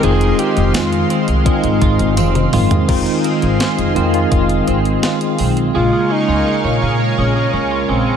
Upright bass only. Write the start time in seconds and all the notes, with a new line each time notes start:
0.03 F1
0.57 F1
0.74 F2
1.28 C2
1.64 G#1
1.82 G#1
2.00 G#1
2.18 F1
2.54 F#1
2.89 F1
3.43 G#1
3.78 F1
3.96 F2
4.32 F1
4.68 G#1
5.39 B1
5.75 A#1
6.28 C#2
6.64 A#1
6.82 A#2
7.18 A#1
7.53 C#2
7.89 A#1